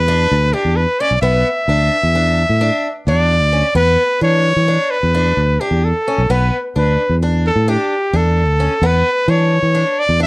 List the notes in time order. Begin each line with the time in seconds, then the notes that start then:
Already playing: E2 B4
0.08 D4
0.31 D2
0.53 D4 G4
0.65 E2
0.76 B4
1.00 C#4 D5
1.11 B1
1.22 B1 B3 E5
1.68 D2 D4
2.03 E2
2.15 D4
2.49 A2
2.61 D4
3.07 E2 D4 D5
3.42 D2
3.53 C#4
3.75 E2 B3 B4
4.21 E3 D4 C#5
4.56 E3
4.68 D4
4.90 B4
5.03 E2
5.14 D4
5.37 D2
5.60 D4 G4
5.71 E2
5.84 A4
6.08 C#4
6.18 B1
6.30 B1 B3 B4
6.76 D2 D4 B4
7.09 E2
7.23 D4
7.46 A4
7.56 A2
7.68 D4 G4
8.13 E2 D4 A4
8.47 D2
8.60 C#4
8.82 E2 B3
8.86 B4
9.28 E3 D4 C#5
9.63 E3
9.75 D4
9.99 D5
10.09 E2
10.20 D4 E5